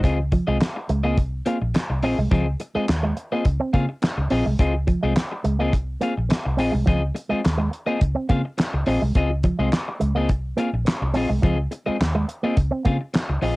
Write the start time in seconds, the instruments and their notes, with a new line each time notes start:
0.03 fingered electric bass C#2, clean electric guitar C4 F4 G#4 D#5, kick, closed hi-hat
0.20 muted clean electric guitar stroke
0.32 clean electric guitar F3, muted clean electric guitar stroke, kick, closed hi-hat
0.47 fingered electric bass C2, clean electric guitar G#3 C4 F4 G#4 D#5
0.61 muted clean electric guitar stroke, snare, clap, closed hi-hat
0.76 muted clean electric guitar stroke
0.89 fingered electric bass C#2, clean electric guitar G#3, closed hi-hat
1.03 clean electric guitar A#3 C4 F4 G#4 D#5
1.18 fingered electric bass C2, muted clean electric guitar stroke, kick, closed hi-hat
1.46 clean electric guitar A#3 C4 F4 G#4 F5, closed hi-hat
1.62 fingered electric bass A#1, muted clean electric guitar stroke
1.74 muted clean electric guitar stroke, snare, clap, closed hi-hat
1.90 fingered electric bass C2, muted clean electric guitar stroke
2.02 fingered electric bass A#1, clean electric guitar C4 F4 G#4 D#5, open hi-hat
2.19 fingered electric bass C2, clean electric guitar G#3
2.31 fingered electric bass C#2, clean electric guitar F3 C4 F4 G#4 D#5, kick, closed hi-hat
2.60 muted clean electric guitar stroke, closed hi-hat
2.75 clean electric guitar G#3 C4 F4 G#4 D#5, muted fingered electric bass stroke
2.88 fingered electric bass D#2, muted clean electric guitar stroke, snare, clap, closed hi-hat
3.03 clean electric guitar G#3, muted clean electric guitar stroke
3.17 muted clean electric guitar stroke, closed hi-hat
3.32 clean electric guitar A#3 C4 F4 G#4 D#5
3.45 fingered electric bass C#2, muted clean electric guitar stroke, kick, closed hi-hat
3.60 clean electric guitar C4
3.73 fingered electric bass C#3, clean electric guitar A#3 C4 F4 G#4 F5, kick, closed hi-hat
3.89 muted clean electric guitar stroke
4.02 muted clean electric guitar stroke, snare, clap, closed hi-hat
4.18 fingered electric bass C#2, muted clean electric guitar stroke
4.30 fingered electric bass A#1, clean electric guitar C4 F4 G#4 D#5, open hi-hat
4.46 fingered electric bass C2, clean electric guitar G#3, muted clean electric guitar stroke
4.59 fingered electric bass C#2, clean electric guitar C4 F4 G#4 D#5, kick, closed hi-hat
4.74 muted clean electric guitar stroke
4.87 clean electric guitar F3, muted clean electric guitar stroke, kick, closed hi-hat
5.03 fingered electric bass C2, clean electric guitar G#3 C4 F4 G#4 D#5
5.16 muted clean electric guitar stroke, snare, clap, closed hi-hat
5.32 muted clean electric guitar stroke
5.44 fingered electric bass C#2, clean electric guitar G#3, closed hi-hat
5.59 clean electric guitar A#3 C4 F4 G#4 D#5
5.73 fingered electric bass C2, kick, closed hi-hat
6.01 clean electric guitar A#3 C4 F4 G#4 F5, closed hi-hat
6.18 fingered electric bass A#1, muted clean electric guitar stroke
6.30 muted clean electric guitar stroke, snare, clap, closed hi-hat
6.45 fingered electric bass C2, muted clean electric guitar stroke
6.57 fingered electric bass A#1, clean electric guitar C4 F4 G#4 D#5, open hi-hat
6.72 fingered electric bass C2, clean electric guitar G#3, muted clean electric guitar stroke
6.86 fingered electric bass C#2, clean electric guitar F3 C4 F4 G#4 D#5, kick, closed hi-hat
7.15 muted clean electric guitar stroke, closed hi-hat
7.29 clean electric guitar G#3 C4 F4 G#4 D#5, muted fingered electric bass stroke
7.44 fingered electric bass D#2, muted clean electric guitar stroke, snare, clap, closed hi-hat
7.58 clean electric guitar G#3, muted clean electric guitar stroke
7.71 muted clean electric guitar stroke, closed hi-hat
7.86 clean electric guitar A#3 C4 F4 G#4 D#5
8.00 fingered electric bass C#2, muted clean electric guitar stroke, kick, closed hi-hat
8.15 clean electric guitar C4
8.29 fingered electric bass C#3, clean electric guitar A#3 C4 F4 G#4 F5, kick, closed hi-hat
8.45 muted clean electric guitar stroke
8.58 muted clean electric guitar stroke, snare, clap, closed hi-hat
8.73 fingered electric bass C#2, muted clean electric guitar stroke
8.86 fingered electric bass A#1, clean electric guitar C4 F4 G#4 D#5, open hi-hat
9.02 fingered electric bass C2, clean electric guitar G#3, muted clean electric guitar stroke
9.15 fingered electric bass C#2, clean electric guitar C4 F4 G#4 D#5, kick, closed hi-hat
9.30 muted clean electric guitar stroke
9.43 clean electric guitar F3, muted clean electric guitar stroke, kick, closed hi-hat
9.59 fingered electric bass C2, clean electric guitar G#3 C4 F4 G#4 D#5
9.72 muted clean electric guitar stroke, snare, clap, closed hi-hat
9.88 muted clean electric guitar stroke
10.00 fingered electric bass C#2, clean electric guitar G#3, closed hi-hat
10.15 clean electric guitar A#3 C4 F4 G#4 D#5
10.29 fingered electric bass C2, muted clean electric guitar stroke, kick, closed hi-hat
10.57 clean electric guitar A#3 C4 F4 G#4 F5, closed hi-hat
10.73 fingered electric bass A#1, muted clean electric guitar stroke
10.86 muted clean electric guitar stroke, snare, clap, closed hi-hat
11.02 fingered electric bass C2, muted clean electric guitar stroke
11.14 fingered electric bass A#1, clean electric guitar C4 F4 G#4 D#5, open hi-hat
11.29 fingered electric bass C2, clean electric guitar G#3
11.42 fingered electric bass C#2, clean electric guitar F3 C4 F4 G#4 D#5, kick, closed hi-hat
11.72 muted clean electric guitar stroke, closed hi-hat
11.86 clean electric guitar G#3 C4 F4 G#4 D#5, muted fingered electric bass stroke
12.00 fingered electric bass D#2, muted clean electric guitar stroke, snare, clap, closed hi-hat
12.15 clean electric guitar G#3, muted clean electric guitar stroke
12.28 muted clean electric guitar stroke, closed hi-hat
12.43 clean electric guitar A#3 C4 F4 G#4 D#5
12.57 fingered electric bass C#2, muted clean electric guitar stroke, kick, closed hi-hat
12.71 clean electric guitar C4
12.85 fingered electric bass C#3, clean electric guitar A#3 C4 F4 G#4 F5, kick, closed hi-hat
13.01 muted clean electric guitar stroke
13.14 muted clean electric guitar stroke, snare, clap, closed hi-hat
13.29 fingered electric bass C#2, muted clean electric guitar stroke
13.42 fingered electric bass A#1, clean electric guitar C4 F4 G#4 D#5, open hi-hat